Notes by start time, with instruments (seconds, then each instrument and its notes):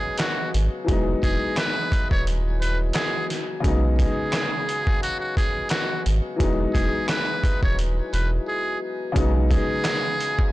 Already playing: upright piano C#3 F#3 G#3 B3 D#4, muted trumpet G#4
0.18 muted trumpet F#4, snare, clap, closed hi-hat
0.54 sub bass G#1, closed hi-hat
0.84 upright piano E3 F#3 G#3, kick
0.89 sub bass E1, upright piano B3 D#4, closed hi-hat
1.23 sub bass E1, muted trumpet G#4, kick, closed hi-hat
1.57 muted trumpet B4, snare, clap, closed hi-hat
1.92 kick, closed hi-hat
2.11 sub bass D#1, muted trumpet C#5, kick
2.27 closed hi-hat
2.61 muted trumpet B4, closed hi-hat
2.93 muted trumpet G#4, snare, clap, closed hi-hat
3.30 snare, closed hi-hat
3.60 upright piano C#3 F#3 G#3, kick
3.64 sub bass B1, upright piano B3 D#4, closed hi-hat
3.98 muted trumpet G#4, kick, closed hi-hat
4.33 snare, clap, closed hi-hat
4.69 closed hi-hat
4.87 kick
5.03 muted trumpet F#4, closed hi-hat
5.20 muted trumpet F#4
5.37 muted trumpet G#4, kick, closed hi-hat
5.69 muted trumpet F#4, snare, clap, closed hi-hat
6.06 sub bass G#1, closed hi-hat
6.36 upright piano E3 F#3 G#3, kick
6.40 sub bass E1, upright piano B3 D#4, closed hi-hat
6.73 sub bass E1, muted trumpet G#4, kick, closed hi-hat
7.08 muted trumpet B4, snare, clap, closed hi-hat
7.44 kick, closed hi-hat
7.63 sub bass D#1, muted trumpet C#5, kick
7.79 closed hi-hat
8.13 sub bass E1, muted trumpet B4, closed hi-hat
8.48 muted trumpet G#4
9.12 upright piano C#3 F#3 G#3, kick, closed hi-hat
9.16 sub bass B1, upright piano B3 D#4
9.51 muted trumpet G#4, kick, closed hi-hat
9.84 finger snap, snare, clap, closed hi-hat
10.20 closed hi-hat
10.39 kick